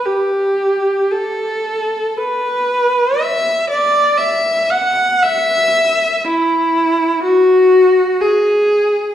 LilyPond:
\new Staff \with { instrumentName = "Viola" } { \time 3/4 \key b \minor \tempo 4 = 59 g'4 a'4 b'4 | e''8 d''8 e''8 fis''8 e''4 | \key e \lydian e'4 fis'4 gis'4 | }